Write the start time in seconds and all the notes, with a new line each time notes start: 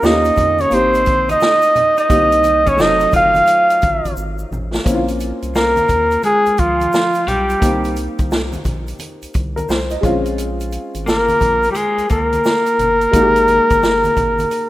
0.02 D#2 A#3 C#4 D#4 F4 G4 D#5, snare, shaker
0.24 closed hi-hat, shaker
0.37 F2, kick, closed hi-hat, low conga, shaker
0.59 C#4 C#5, closed hi-hat, high conga, shaker
0.70 G#1 A#3 C4 D#4 G4, closed hi-hat, shaker
0.74 C5
0.94 closed hi-hat, shaker
1.05 A#1, kick, closed hi-hat, shaker
1.29 D#4 D#5, closed hi-hat, high conga, shaker
1.41 snare, shaker
1.62 closed hi-hat, shaker
1.76 closed hi-hat, low conga, shaker
1.97 D#4 D#5, closed hi-hat, shaker
2.09 C2 A#3 C4 D#4 G4, kick, closed hi-hat, shaker
2.32 closed hi-hat, shaker
2.43 closed hi-hat, high conga, shaker
2.66 C#4 C#5, kick, closed hi-hat, shaker
2.76 F1 F#3 A3 C4 D#4, snare, shaker
2.82 D#5
3.00 closed hi-hat, shaker
3.12 F#1 F4, kick, closed hi-hat, low conga, shaker
3.16 F5
3.34 closed hi-hat, high conga, shaker
3.47 closed hi-hat, shaker
3.70 closed hi-hat, shaker
3.82 A1, kick, closed hi-hat, shaker
4.05 A1, closed hi-hat, high conga, shaker
4.17 G#1, shaker
4.39 shaker
4.51 A1, low conga, shaker
4.74 snare, shaker
4.84 A#1 A#3 C4 C#4 E4, kick, closed hi-hat, shaker
4.94 F4
5.08 closed hi-hat, shaker
5.20 closed hi-hat, shaker
5.42 C2, closed hi-hat, shaker
5.55 A#3 A#4, snare, shaker
5.76 closed hi-hat, high conga, shaker
5.89 D#2, kick, closed hi-hat, low conga, shaker
6.11 closed hi-hat, shaker
6.23 G#3 G#4, closed hi-hat, high conga, shaker
6.46 C#2, closed hi-hat, shaker
6.57 C#2 F3 F4, kick, closed hi-hat, shaker
6.81 closed hi-hat, high conga, shaker
6.93 snare, shaker
7.14 closed hi-hat, shaker
7.27 B1 G3 G4, closed hi-hat, low conga, shaker
7.49 closed hi-hat, shaker
7.60 C2 A#3 C4 D#4 G4, kick, closed hi-hat, shaker
7.84 closed hi-hat, shaker
7.96 closed hi-hat, shaker
8.19 C2, kick, closed hi-hat, shaker
8.31 snare, shaker
8.53 closed hi-hat, high conga, shaker
8.65 A#1, kick, closed hi-hat, low conga, shaker
8.87 closed hi-hat, shaker
8.99 closed hi-hat, high conga, shaker
9.22 C2, closed hi-hat, shaker
9.34 C2, kick, closed hi-hat, shaker
9.56 A#4, closed hi-hat, high conga, shaker
9.69 C2 C5, snare, shaker
9.90 D#5, closed hi-hat, shaker
10.01 A#1 G#3 C4 C#4 F4, kick, closed hi-hat, low conga, shaker
10.26 closed hi-hat, shaker
10.38 closed hi-hat, shaker
10.60 closed hi-hat, shaker
10.72 closed hi-hat, shaker
10.95 G#1, closed hi-hat, shaker
11.06 A#3 A#4, snare, shaker
11.29 closed hi-hat, high conga, shaker
11.41 A#1, kick, closed hi-hat, low conga, shaker
11.63 closed hi-hat, shaker
11.70 G3 G4
11.74 G#3 G#4, closed hi-hat, high conga, shaker
11.98 C#2, closed hi-hat, shaker
12.09 C#2 A#3 A#4, kick, closed hi-hat, shaker
12.32 closed hi-hat, high conga, shaker
12.45 snare, shaker
12.66 closed hi-hat, shaker
12.79 G1, closed hi-hat, low conga, shaker
13.01 closed hi-hat, shaker
13.11 G#1 G#3 A#3 D#4 F#4, kick, closed hi-hat, shaker
13.21 G4
13.36 closed hi-hat, shaker
13.48 closed hi-hat, high conga, shaker
13.70 G1, kick, closed hi-hat, shaker
13.83 snare, shaker
14.04 closed hi-hat, high conga, shaker
14.17 G#1, kick, closed hi-hat, low conga, shaker
14.39 closed hi-hat, high conga, shaker
14.51 closed hi-hat, high conga, shaker